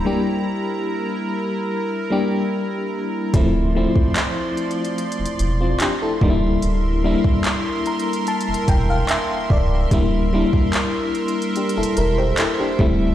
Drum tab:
HH |------------------------------------------------|x-----------x-----x-x-x-x-x-x-x-----x-----------|x-----------x-----x-x-x-x-x-x-x-----x-----------|x-----------x-----x-x-x-x-x-x-x-----x-----------|
CP |------------------------------------------------|------------x-----------------------x-----------|------------x-----------------------x-----------|------------x-----------------------x-----------|
BD |------------------------------------------------|o--------o--------------------------------o-----|---------o--------------------o-----------o-----|o--------o--------------------------------o-----|